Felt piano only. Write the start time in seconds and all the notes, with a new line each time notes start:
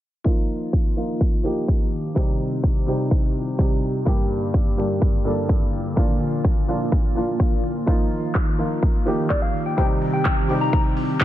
0.24 F3 A#3 D#4 F4
0.96 F3 A#3 D#4 F4
1.43 F3 A#3 D#4 G4
2.15 C3 G3 C4 D#4 G4
2.86 C3 G3 C4 D#4 G4
3.58 C3 G3 C4 D#4 G4
4.05 G2 G3 A#3 D4 G4
4.77 G2 G3 A#3 D4 G4
5.24 G2 G3 A#3 D4 A4
5.96 A#2 F3 A#3 D4 F4
6.68 A#2 F3 A#3 D4 F4
7.15 A#2 F3 A#3 D4 F4
7.86 F3 A#3 D#4 F4
8.58 F3 A#3 D#4 F4
9.05 F3 A#3 D#4 G4
9.77 C3 G3 C4 D#4 G4
10.48 C3 G3 C4 D#4 G4
11.20 C3 G3 C4 D#4 G4